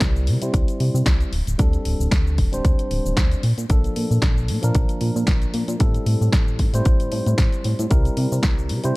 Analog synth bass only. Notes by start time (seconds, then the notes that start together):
0.01 C2
0.28 C3
0.42 C3
0.54 C2
0.80 C3
0.94 C3
1.07 C2
1.33 D1
1.48 D1
1.59 D2
1.85 D1
2.00 D1
2.12 D2
2.38 D1
2.53 D1
2.65 D2
2.79 D1
2.91 D1
3.05 D1
3.17 D2
3.43 A#2
3.58 A#2
3.70 A#1
3.97 A#2
4.11 A#2
4.23 A#1
4.49 A#2
4.64 A#2
4.75 A#1
5.01 A#2
5.16 A#2
5.28 A#1
5.54 A#2
5.68 A#2
5.80 A1
6.06 A2
6.21 A2
6.33 A1
6.60 A2
6.73 A2
6.86 A1
7.00 A2
7.12 A2
7.26 A2
7.38 A1
7.65 A2
7.79 A2
7.91 C2
8.17 C3
8.32 C3
8.44 C2
8.70 C3
8.85 C3